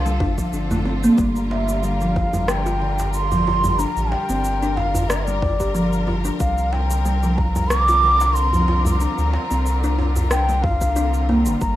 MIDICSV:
0, 0, Header, 1, 7, 480
1, 0, Start_track
1, 0, Tempo, 652174
1, 870, Time_signature, 4, 2, 24, 8
1, 8655, End_track
2, 0, Start_track
2, 0, Title_t, "Bansuri"
2, 0, Program_c, 0, 73
2, 0, Note_on_c, 0, 77, 112
2, 392, Note_off_c, 0, 77, 0
2, 1113, Note_on_c, 0, 76, 88
2, 1350, Note_on_c, 0, 77, 95
2, 1361, Note_off_c, 0, 76, 0
2, 1827, Note_on_c, 0, 79, 108
2, 1838, Note_off_c, 0, 77, 0
2, 2301, Note_off_c, 0, 79, 0
2, 2306, Note_on_c, 0, 84, 120
2, 2790, Note_on_c, 0, 82, 114
2, 2801, Note_off_c, 0, 84, 0
2, 3029, Note_on_c, 0, 79, 111
2, 3040, Note_off_c, 0, 82, 0
2, 3506, Note_on_c, 0, 77, 93
2, 3517, Note_off_c, 0, 79, 0
2, 3746, Note_on_c, 0, 74, 82
2, 3757, Note_off_c, 0, 77, 0
2, 3800, Note_on_c, 0, 76, 72
2, 3811, Note_off_c, 0, 74, 0
2, 3852, Note_on_c, 0, 74, 94
2, 3863, Note_off_c, 0, 76, 0
2, 4465, Note_off_c, 0, 74, 0
2, 4705, Note_on_c, 0, 77, 95
2, 4948, Note_on_c, 0, 79, 97
2, 4959, Note_off_c, 0, 77, 0
2, 5427, Note_on_c, 0, 82, 105
2, 5438, Note_off_c, 0, 79, 0
2, 5658, Note_on_c, 0, 86, 124
2, 5669, Note_off_c, 0, 82, 0
2, 6135, Note_on_c, 0, 84, 110
2, 6146, Note_off_c, 0, 86, 0
2, 6616, Note_off_c, 0, 84, 0
2, 6620, Note_on_c, 0, 82, 105
2, 7316, Note_off_c, 0, 82, 0
2, 7587, Note_on_c, 0, 79, 114
2, 7823, Note_on_c, 0, 77, 115
2, 7834, Note_off_c, 0, 79, 0
2, 8306, Note_off_c, 0, 77, 0
2, 8545, Note_on_c, 0, 82, 119
2, 8655, Note_off_c, 0, 82, 0
2, 8655, End_track
3, 0, Start_track
3, 0, Title_t, "String section"
3, 0, Program_c, 1, 48
3, 0, Note_on_c, 1, 50, 77
3, 0, Note_on_c, 1, 60, 77
3, 0, Note_on_c, 1, 65, 73
3, 0, Note_on_c, 1, 69, 84
3, 840, Note_off_c, 1, 60, 0
3, 846, Note_off_c, 1, 69, 0
3, 865, Note_on_c, 1, 70, 88
3, 868, Note_on_c, 1, 55, 70
3, 4679, Note_off_c, 1, 55, 0
3, 4681, Note_off_c, 1, 50, 0
3, 4681, Note_off_c, 1, 65, 0
3, 4708, Note_on_c, 1, 50, 82
3, 4708, Note_on_c, 1, 60, 72
3, 4709, Note_on_c, 1, 65, 72
3, 8518, Note_off_c, 1, 70, 0
3, 8520, Note_off_c, 1, 60, 0
3, 8550, Note_on_c, 1, 70, 83
3, 8553, Note_on_c, 1, 55, 76
3, 8655, Note_off_c, 1, 50, 0
3, 8655, Note_off_c, 1, 55, 0
3, 8655, Note_off_c, 1, 65, 0
3, 8655, Note_off_c, 1, 70, 0
3, 8655, End_track
4, 0, Start_track
4, 0, Title_t, "Kalimba"
4, 0, Program_c, 2, 108
4, 43, Note_on_c, 2, 55, 74
4, 146, Note_off_c, 2, 55, 0
4, 150, Note_on_c, 2, 62, 96
4, 267, Note_off_c, 2, 62, 0
4, 281, Note_on_c, 2, 53, 67
4, 385, Note_off_c, 2, 53, 0
4, 394, Note_on_c, 2, 62, 78
4, 509, Note_off_c, 2, 62, 0
4, 521, Note_on_c, 2, 57, 81
4, 625, Note_off_c, 2, 57, 0
4, 630, Note_on_c, 2, 60, 72
4, 753, Note_off_c, 2, 60, 0
4, 761, Note_on_c, 2, 58, 91
4, 865, Note_off_c, 2, 58, 0
4, 867, Note_on_c, 2, 55, 82
4, 1225, Note_off_c, 2, 55, 0
4, 1237, Note_on_c, 2, 50, 73
4, 1338, Note_off_c, 2, 50, 0
4, 1351, Note_on_c, 2, 55, 82
4, 1474, Note_off_c, 2, 55, 0
4, 1483, Note_on_c, 2, 53, 74
4, 1586, Note_off_c, 2, 53, 0
4, 1723, Note_on_c, 2, 55, 80
4, 1949, Note_off_c, 2, 55, 0
4, 1958, Note_on_c, 2, 65, 80
4, 2058, Note_off_c, 2, 65, 0
4, 2073, Note_on_c, 2, 50, 75
4, 2195, Note_off_c, 2, 50, 0
4, 2442, Note_on_c, 2, 53, 82
4, 2546, Note_off_c, 2, 53, 0
4, 2554, Note_on_c, 2, 65, 73
4, 2675, Note_off_c, 2, 65, 0
4, 2681, Note_on_c, 2, 55, 70
4, 2780, Note_off_c, 2, 55, 0
4, 2789, Note_on_c, 2, 62, 81
4, 3146, Note_off_c, 2, 62, 0
4, 3161, Note_on_c, 2, 60, 80
4, 3265, Note_off_c, 2, 60, 0
4, 3404, Note_on_c, 2, 62, 102
4, 3869, Note_off_c, 2, 62, 0
4, 3882, Note_on_c, 2, 55, 77
4, 3986, Note_off_c, 2, 55, 0
4, 4122, Note_on_c, 2, 67, 73
4, 4184, Note_off_c, 2, 67, 0
4, 4228, Note_on_c, 2, 53, 104
4, 4353, Note_off_c, 2, 53, 0
4, 4468, Note_on_c, 2, 65, 72
4, 4586, Note_off_c, 2, 65, 0
4, 4598, Note_on_c, 2, 62, 91
4, 4704, Note_off_c, 2, 62, 0
4, 4711, Note_on_c, 2, 55, 82
4, 5068, Note_off_c, 2, 55, 0
4, 5081, Note_on_c, 2, 50, 75
4, 5180, Note_off_c, 2, 50, 0
4, 5192, Note_on_c, 2, 55, 81
4, 5314, Note_off_c, 2, 55, 0
4, 5321, Note_on_c, 2, 53, 78
4, 5425, Note_off_c, 2, 53, 0
4, 5563, Note_on_c, 2, 55, 76
4, 5788, Note_off_c, 2, 55, 0
4, 5806, Note_on_c, 2, 65, 77
4, 5902, Note_off_c, 2, 65, 0
4, 5912, Note_on_c, 2, 50, 81
4, 6034, Note_off_c, 2, 50, 0
4, 6284, Note_on_c, 2, 53, 77
4, 6387, Note_off_c, 2, 53, 0
4, 6390, Note_on_c, 2, 65, 75
4, 6514, Note_off_c, 2, 65, 0
4, 6523, Note_on_c, 2, 55, 76
4, 6621, Note_off_c, 2, 55, 0
4, 6632, Note_on_c, 2, 62, 78
4, 6988, Note_off_c, 2, 62, 0
4, 6998, Note_on_c, 2, 60, 70
4, 7104, Note_off_c, 2, 60, 0
4, 7242, Note_on_c, 2, 62, 101
4, 7708, Note_off_c, 2, 62, 0
4, 7719, Note_on_c, 2, 55, 77
4, 7824, Note_off_c, 2, 55, 0
4, 7960, Note_on_c, 2, 62, 71
4, 8058, Note_off_c, 2, 62, 0
4, 8067, Note_on_c, 2, 62, 104
4, 8185, Note_off_c, 2, 62, 0
4, 8309, Note_on_c, 2, 58, 68
4, 8426, Note_off_c, 2, 58, 0
4, 8439, Note_on_c, 2, 50, 70
4, 8539, Note_off_c, 2, 50, 0
4, 8546, Note_on_c, 2, 55, 82
4, 8655, Note_off_c, 2, 55, 0
4, 8655, End_track
5, 0, Start_track
5, 0, Title_t, "Sub bass"
5, 0, Program_c, 3, 38
5, 0, Note_on_c, 3, 36, 89
5, 143, Note_off_c, 3, 36, 0
5, 148, Note_on_c, 3, 31, 111
5, 302, Note_off_c, 3, 31, 0
5, 387, Note_on_c, 3, 31, 90
5, 799, Note_off_c, 3, 31, 0
5, 871, Note_on_c, 3, 31, 103
5, 2838, Note_off_c, 3, 31, 0
5, 2919, Note_on_c, 3, 33, 105
5, 3057, Note_off_c, 3, 33, 0
5, 3160, Note_on_c, 3, 31, 90
5, 4640, Note_off_c, 3, 31, 0
5, 4713, Note_on_c, 3, 36, 102
5, 6679, Note_off_c, 3, 36, 0
5, 6759, Note_on_c, 3, 38, 105
5, 6897, Note_off_c, 3, 38, 0
5, 7002, Note_on_c, 3, 36, 96
5, 8438, Note_on_c, 3, 31, 92
5, 8449, Note_off_c, 3, 36, 0
5, 8505, Note_off_c, 3, 31, 0
5, 8549, Note_on_c, 3, 31, 102
5, 8655, Note_off_c, 3, 31, 0
5, 8655, End_track
6, 0, Start_track
6, 0, Title_t, "Djembe"
6, 41, Note_on_c, 9, 63, 33
6, 115, Note_off_c, 9, 63, 0
6, 150, Note_on_c, 9, 64, 87
6, 224, Note_off_c, 9, 64, 0
6, 521, Note_on_c, 9, 64, 82
6, 595, Note_off_c, 9, 64, 0
6, 627, Note_on_c, 9, 63, 71
6, 701, Note_off_c, 9, 63, 0
6, 1112, Note_on_c, 9, 62, 60
6, 1186, Note_off_c, 9, 62, 0
6, 1590, Note_on_c, 9, 63, 85
6, 1664, Note_off_c, 9, 63, 0
6, 1717, Note_on_c, 9, 64, 92
6, 1721, Note_on_c, 9, 62, 38
6, 1790, Note_off_c, 9, 64, 0
6, 1794, Note_off_c, 9, 62, 0
6, 1962, Note_on_c, 9, 62, 47
6, 2036, Note_off_c, 9, 62, 0
6, 2204, Note_on_c, 9, 62, 67
6, 2204, Note_on_c, 9, 63, 37
6, 2277, Note_off_c, 9, 62, 0
6, 2278, Note_off_c, 9, 63, 0
6, 2441, Note_on_c, 9, 64, 81
6, 2515, Note_off_c, 9, 64, 0
6, 2554, Note_on_c, 9, 62, 34
6, 2559, Note_on_c, 9, 63, 77
6, 2628, Note_off_c, 9, 62, 0
6, 2633, Note_off_c, 9, 63, 0
6, 2678, Note_on_c, 9, 64, 86
6, 2751, Note_off_c, 9, 64, 0
6, 3031, Note_on_c, 9, 62, 66
6, 3104, Note_off_c, 9, 62, 0
6, 3511, Note_on_c, 9, 63, 98
6, 3585, Note_off_c, 9, 63, 0
6, 3641, Note_on_c, 9, 64, 108
6, 3714, Note_off_c, 9, 64, 0
6, 3881, Note_on_c, 9, 63, 38
6, 3955, Note_off_c, 9, 63, 0
6, 3994, Note_on_c, 9, 64, 97
6, 4068, Note_off_c, 9, 64, 0
6, 4472, Note_on_c, 9, 63, 80
6, 4545, Note_off_c, 9, 63, 0
6, 4950, Note_on_c, 9, 62, 62
6, 5024, Note_off_c, 9, 62, 0
6, 5431, Note_on_c, 9, 63, 85
6, 5505, Note_off_c, 9, 63, 0
6, 5563, Note_on_c, 9, 64, 88
6, 5564, Note_on_c, 9, 62, 35
6, 5637, Note_off_c, 9, 64, 0
6, 5638, Note_off_c, 9, 62, 0
6, 5802, Note_on_c, 9, 62, 51
6, 5876, Note_off_c, 9, 62, 0
6, 6039, Note_on_c, 9, 63, 36
6, 6043, Note_on_c, 9, 62, 70
6, 6113, Note_off_c, 9, 63, 0
6, 6117, Note_off_c, 9, 62, 0
6, 6278, Note_on_c, 9, 64, 79
6, 6352, Note_off_c, 9, 64, 0
6, 6388, Note_on_c, 9, 63, 83
6, 6390, Note_on_c, 9, 62, 31
6, 6462, Note_off_c, 9, 63, 0
6, 6464, Note_off_c, 9, 62, 0
6, 6512, Note_on_c, 9, 64, 98
6, 6586, Note_off_c, 9, 64, 0
6, 6870, Note_on_c, 9, 62, 60
6, 6943, Note_off_c, 9, 62, 0
6, 7349, Note_on_c, 9, 63, 85
6, 7423, Note_off_c, 9, 63, 0
6, 7478, Note_on_c, 9, 63, 36
6, 7481, Note_on_c, 9, 64, 88
6, 7551, Note_off_c, 9, 63, 0
6, 7554, Note_off_c, 9, 64, 0
6, 7715, Note_on_c, 9, 63, 33
6, 7789, Note_off_c, 9, 63, 0
6, 7831, Note_on_c, 9, 64, 105
6, 7904, Note_off_c, 9, 64, 0
6, 7957, Note_on_c, 9, 63, 35
6, 8030, Note_off_c, 9, 63, 0
6, 8311, Note_on_c, 9, 63, 69
6, 8385, Note_off_c, 9, 63, 0
6, 8655, End_track
7, 0, Start_track
7, 0, Title_t, "Drums"
7, 44, Note_on_c, 9, 82, 31
7, 118, Note_off_c, 9, 82, 0
7, 149, Note_on_c, 9, 36, 110
7, 223, Note_off_c, 9, 36, 0
7, 280, Note_on_c, 9, 36, 60
7, 281, Note_on_c, 9, 82, 70
7, 353, Note_off_c, 9, 36, 0
7, 355, Note_off_c, 9, 82, 0
7, 391, Note_on_c, 9, 82, 54
7, 464, Note_off_c, 9, 82, 0
7, 522, Note_on_c, 9, 82, 34
7, 596, Note_off_c, 9, 82, 0
7, 762, Note_on_c, 9, 82, 62
7, 836, Note_off_c, 9, 82, 0
7, 868, Note_on_c, 9, 82, 50
7, 870, Note_on_c, 9, 36, 106
7, 942, Note_off_c, 9, 82, 0
7, 944, Note_off_c, 9, 36, 0
7, 1000, Note_on_c, 9, 82, 33
7, 1074, Note_off_c, 9, 82, 0
7, 1241, Note_on_c, 9, 82, 70
7, 1314, Note_off_c, 9, 82, 0
7, 1350, Note_on_c, 9, 82, 54
7, 1423, Note_off_c, 9, 82, 0
7, 1479, Note_on_c, 9, 82, 32
7, 1552, Note_off_c, 9, 82, 0
7, 1592, Note_on_c, 9, 36, 108
7, 1665, Note_off_c, 9, 36, 0
7, 1720, Note_on_c, 9, 82, 66
7, 1793, Note_off_c, 9, 82, 0
7, 1827, Note_on_c, 9, 37, 81
7, 1829, Note_on_c, 9, 82, 54
7, 1901, Note_off_c, 9, 37, 0
7, 1903, Note_off_c, 9, 82, 0
7, 1960, Note_on_c, 9, 82, 33
7, 2033, Note_off_c, 9, 82, 0
7, 2199, Note_on_c, 9, 82, 71
7, 2273, Note_off_c, 9, 82, 0
7, 2307, Note_on_c, 9, 82, 58
7, 2381, Note_off_c, 9, 82, 0
7, 2440, Note_on_c, 9, 82, 36
7, 2514, Note_off_c, 9, 82, 0
7, 2680, Note_on_c, 9, 82, 64
7, 2753, Note_off_c, 9, 82, 0
7, 2791, Note_on_c, 9, 82, 55
7, 2865, Note_off_c, 9, 82, 0
7, 2920, Note_on_c, 9, 82, 33
7, 2994, Note_off_c, 9, 82, 0
7, 3159, Note_on_c, 9, 82, 66
7, 3233, Note_off_c, 9, 82, 0
7, 3272, Note_on_c, 9, 82, 57
7, 3345, Note_off_c, 9, 82, 0
7, 3405, Note_on_c, 9, 82, 32
7, 3479, Note_off_c, 9, 82, 0
7, 3644, Note_on_c, 9, 82, 70
7, 3718, Note_off_c, 9, 82, 0
7, 3752, Note_on_c, 9, 37, 81
7, 3754, Note_on_c, 9, 82, 57
7, 3826, Note_off_c, 9, 37, 0
7, 3828, Note_off_c, 9, 82, 0
7, 3882, Note_on_c, 9, 82, 36
7, 3955, Note_off_c, 9, 82, 0
7, 3992, Note_on_c, 9, 36, 120
7, 4066, Note_off_c, 9, 36, 0
7, 4122, Note_on_c, 9, 36, 65
7, 4122, Note_on_c, 9, 82, 68
7, 4195, Note_off_c, 9, 36, 0
7, 4196, Note_off_c, 9, 82, 0
7, 4234, Note_on_c, 9, 82, 58
7, 4307, Note_off_c, 9, 82, 0
7, 4363, Note_on_c, 9, 82, 35
7, 4437, Note_off_c, 9, 82, 0
7, 4599, Note_on_c, 9, 82, 70
7, 4672, Note_off_c, 9, 82, 0
7, 4710, Note_on_c, 9, 82, 57
7, 4712, Note_on_c, 9, 36, 126
7, 4784, Note_off_c, 9, 82, 0
7, 4786, Note_off_c, 9, 36, 0
7, 4842, Note_on_c, 9, 82, 35
7, 4915, Note_off_c, 9, 82, 0
7, 5082, Note_on_c, 9, 82, 74
7, 5156, Note_off_c, 9, 82, 0
7, 5192, Note_on_c, 9, 82, 57
7, 5265, Note_off_c, 9, 82, 0
7, 5321, Note_on_c, 9, 82, 35
7, 5395, Note_off_c, 9, 82, 0
7, 5432, Note_on_c, 9, 36, 104
7, 5505, Note_off_c, 9, 36, 0
7, 5562, Note_on_c, 9, 82, 71
7, 5635, Note_off_c, 9, 82, 0
7, 5670, Note_on_c, 9, 37, 80
7, 5672, Note_on_c, 9, 82, 59
7, 5743, Note_off_c, 9, 37, 0
7, 5745, Note_off_c, 9, 82, 0
7, 5801, Note_on_c, 9, 82, 37
7, 5875, Note_off_c, 9, 82, 0
7, 6039, Note_on_c, 9, 82, 77
7, 6112, Note_off_c, 9, 82, 0
7, 6151, Note_on_c, 9, 82, 61
7, 6225, Note_off_c, 9, 82, 0
7, 6283, Note_on_c, 9, 82, 35
7, 6357, Note_off_c, 9, 82, 0
7, 6522, Note_on_c, 9, 82, 69
7, 6595, Note_off_c, 9, 82, 0
7, 6628, Note_on_c, 9, 82, 53
7, 6701, Note_off_c, 9, 82, 0
7, 6759, Note_on_c, 9, 82, 34
7, 6833, Note_off_c, 9, 82, 0
7, 6999, Note_on_c, 9, 82, 70
7, 7072, Note_off_c, 9, 82, 0
7, 7111, Note_on_c, 9, 82, 57
7, 7185, Note_off_c, 9, 82, 0
7, 7240, Note_on_c, 9, 82, 36
7, 7313, Note_off_c, 9, 82, 0
7, 7478, Note_on_c, 9, 82, 73
7, 7551, Note_off_c, 9, 82, 0
7, 7586, Note_on_c, 9, 37, 76
7, 7588, Note_on_c, 9, 82, 60
7, 7660, Note_off_c, 9, 37, 0
7, 7662, Note_off_c, 9, 82, 0
7, 7721, Note_on_c, 9, 82, 33
7, 7794, Note_off_c, 9, 82, 0
7, 7829, Note_on_c, 9, 36, 126
7, 7903, Note_off_c, 9, 36, 0
7, 7957, Note_on_c, 9, 82, 70
7, 7959, Note_on_c, 9, 36, 68
7, 8031, Note_off_c, 9, 82, 0
7, 8033, Note_off_c, 9, 36, 0
7, 8068, Note_on_c, 9, 82, 59
7, 8142, Note_off_c, 9, 82, 0
7, 8197, Note_on_c, 9, 82, 36
7, 8271, Note_off_c, 9, 82, 0
7, 8433, Note_on_c, 9, 82, 70
7, 8506, Note_off_c, 9, 82, 0
7, 8546, Note_on_c, 9, 82, 52
7, 8549, Note_on_c, 9, 36, 112
7, 8619, Note_off_c, 9, 82, 0
7, 8622, Note_off_c, 9, 36, 0
7, 8655, End_track
0, 0, End_of_file